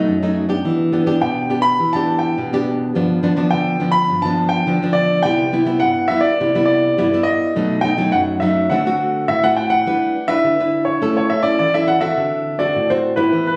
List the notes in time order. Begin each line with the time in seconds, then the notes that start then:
Already playing: F#3 A3 D#4 D#5
0.08 F#2
0.22 F#3 A3 D#4
0.49 B3 D4 G4
0.65 E3
0.93 B3 D4 G4
1.06 B3 D4 G4
1.22 B2 G5
1.50 B3 D4 G4
1.62 B5
1.80 E3
1.93 B3 D4 G4 A5
2.19 G5
2.38 B2
2.53 B3 D4 G4
2.95 G2 F3 B3 D4
3.23 F3 B3 D4
3.36 F3 B3 D4
3.51 D3 G5
3.80 F3 B3 D4
3.92 B5
4.10 G2
4.22 F3 B3 D4 A5
4.49 G5
4.67 D3 F3 B3 D4
4.83 F3 B3 D4
4.93 D5
5.23 C3 G3 B3 E4 G5
5.53 G3 B3 E4
5.66 G3 B3 E4
5.80 G2 F#5
6.08 G3 B3 E4 E5
6.21 D5
6.40 C3 G3 B3 E4
6.55 G3 B3 E4
6.66 D5
6.98 G2 G3 B3 E4
7.13 G3 B3 E4
7.23 D#5
7.56 B2 F#3 A3 D#4
7.81 F#3 A3 D#4 G5
7.98 F#3 A3 D#4
8.12 F#2 F#5
8.40 F#3 A3 D#4 E5
8.70 D3 A3 C4 F#4 F#5
8.86 A3 C4 F#4
9.28 A2 E5
9.44 A3 C4 F#4 F#5
9.57 G5
9.70 F#5
9.87 G3 D4 E4 B4
10.28 D4 E4 B4 E5
10.44 D3
10.60 D4 E4 B4
10.85 C#5
11.02 A3 C#4 E4 A4
11.17 C#5
11.30 E5
11.43 C#4 E4 A4 D5
11.59 E3 D5
11.74 C#4 E4 A4 E5
11.88 F#5
12.01 C4 F#4 A4 E5
12.18 D3
12.59 C4 F#4 A4 D5
12.75 A2
12.90 C4 F#4 A4 C5
13.16 B3 E4 G4 B4
13.33 E3
13.47 B4